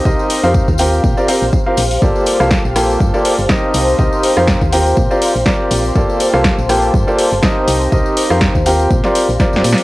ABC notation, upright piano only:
X:1
M:4/4
L:1/16
Q:"Swing 16ths" 1/4=122
K:Gm
V:1 name="Upright piano"
[CEGBe]3 [CEGBf]2 z [CFGBg]3 [CFGBd] [CFGBf] z2 [CFGBf] z2 | [B,FGAd]3 [B,FGAf]2 z [B,FGAg]3 [B,FGAd]2 z [CEGBe]4 | [CEGBe]3 [CEGBf]2 z [CFGBg]3 [CFGBd]2 z [CFGBd]4 | [B,FGAd]3 [B,FGAf]2 z [B,FGAg]3 [B,FGAd]2 z [CEGBe]4 |
[CEGBe]3 [CEGBf]2 z [CFGBg]3 [CFGBd]2 z [CFGBd]4 |]